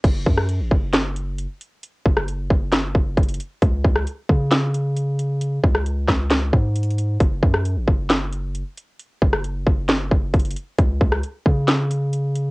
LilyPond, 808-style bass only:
\new Staff \with { instrumentName = "808-style bass" } { \clef bass \time 4/4 \key cis \phrygian \tempo 4 = 134 fis,,8 fis,8. a,,16 fis,,4.~ fis,,16 r8. | r8 fis,,4 fis,,4 fis,,8 fis,,8 r8 | cis,8 cis,8 r8 cis2~ cis8~ | cis8 cis,4 cis,4 gis,4. |
fis,,8 fis,8. a,,16 fis,,4.~ fis,,16 r8. | r8 fis,,4 fis,,4 fis,,8 fis,,8 r8 | cis,8 cis,8 r8 cis2~ cis8 | }